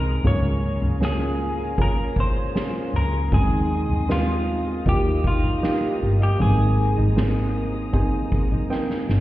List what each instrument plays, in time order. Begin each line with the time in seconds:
Already playing: fingered electric bass C2, steel-string acoustic guitar G#2 C4 D#4, grand piano G#3 C4 D#4 G#4, string section G#4 D#5 C6 D#6, clean electric guitar A#4
0.05 steel-string acoustic guitar G#4
0.23 fingered electric bass C#2, grand piano G#2 A#3 C#4 F4 G#4, steel-string acoustic guitar C#3 A#4, string section G#4 F5 G#5 A#5, clean electric guitar C#5, floor tom
0.44 steel-string acoustic guitar C#4
0.63 steel-string acoustic guitar F4
0.81 fingered electric bass C#2, steel-string acoustic guitar C#4, floor tom
1.00 grand piano A#3 C#4 F4 G#4, steel-string acoustic guitar F4, snare
1.05 clean electric guitar G#4
1.20 steel-string acoustic guitar C#4
1.39 steel-string acoustic guitar F4
1.58 steel-string acoustic guitar A#4
1.77 steel-string acoustic guitar C#3 A#4, grand piano A#3 C#4 F4 G#4, kick, floor tom
1.82 clean electric guitar A#4
1.97 steel-string acoustic guitar C#4
2.16 steel-string acoustic guitar F4, clean electric guitar C5, kick
2.36 steel-string acoustic guitar C#4
2.55 grand piano A#3 C#4 F4 G#4, steel-string acoustic guitar F4, snare
2.74 steel-string acoustic guitar C#4
2.93 fingered electric bass C#2, steel-string acoustic guitar F4, clean electric guitar A#4, floor tom
3.13 steel-string acoustic guitar A#4
3.32 fingered electric bass D#2, steel-string acoustic guitar D#3 G#4, grand piano D#3 G#3 C4 D#4 G#4, clean electric guitar G#4, string section D#5 C6 D#6, kick, floor tom
3.52 steel-string acoustic guitar C4
3.71 steel-string acoustic guitar D#4
3.89 fingered electric bass D#2, steel-string acoustic guitar C4, floor tom
4.09 grand piano G#3 C4 D#4 A#4, steel-string acoustic guitar D#4, clean electric guitar F4, snare
4.28 steel-string acoustic guitar C4
4.47 steel-string acoustic guitar D#4
4.67 steel-string acoustic guitar G#4
4.86 fingered electric bass D#2, grand piano A#2 A#3 D#4 F4 F#4, steel-string acoustic guitar D#3 D#5, string section G4 F5 A#5 D#6, clean electric guitar G4, kick, floor tom
4.93 grand piano G4
5.05 steel-string acoustic guitar D#4
5.24 clean electric guitar F4, steel-string acoustic guitar G4, kick
5.44 steel-string acoustic guitar D#4, floor tom
5.62 grand piano A#3 D#4 F4 G4, steel-string acoustic guitar G4, snare
5.82 steel-string acoustic guitar D#4
6.01 fingered electric bass G1, steel-string acoustic guitar G4, floor tom
6.20 clean electric guitar G4, steel-string acoustic guitar D#5
6.39 fingered electric bass G#1, grand piano G#2 D#3 A#3 C4 D#4 G#4, steel-string acoustic guitar G#2 G#4, string section G#4 C5 A#5 D#6, clean electric guitar G#4, floor tom
6.59 steel-string acoustic guitar D#4
6.78 steel-string acoustic guitar A#4
6.97 fingered electric bass G#1, steel-string acoustic guitar D#4, floor tom
7.16 grand piano A#3 C4 D#4 G#4, steel-string acoustic guitar A#4, snare
7.35 steel-string acoustic guitar D#4
7.55 steel-string acoustic guitar A#4
7.74 steel-string acoustic guitar G#4
7.93 grand piano A#3 C4 D#4 G#4, steel-string acoustic guitar G#4, kick, floor tom
8.13 steel-string acoustic guitar D#4
8.32 steel-string acoustic guitar A#4, kick
8.52 steel-string acoustic guitar D#4, floor tom
8.70 grand piano A#3 C4 D#4 G5, steel-string acoustic guitar A#4, snare
8.90 steel-string acoustic guitar D#4, snare
9.09 fingered electric bass G1, steel-string acoustic guitar A#4, snare